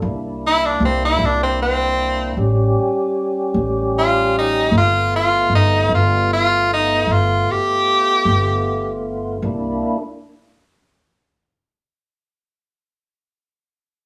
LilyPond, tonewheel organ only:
\new Staff \with { instrumentName = "Tonewheel organ" } { \time 12/8 \key g \dorian \tempo 4. = 51 <bes d' e'>2. <g cis' g'>2. | <a b f'>1. | <bes d' e'>8 r1 r4. | }